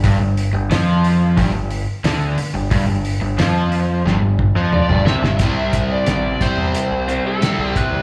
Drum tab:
HH |o-o-o-o-o-o-o-o-|o-o-o-o---------|x-x-x-x-x-x-x-x-|
SD |----o-------o---|----o---o-----oo|----o-------o---|
T2 |----------------|------------oo--|----------------|
BD |o-------o-------|o---------o-----|o-o---o-------o-|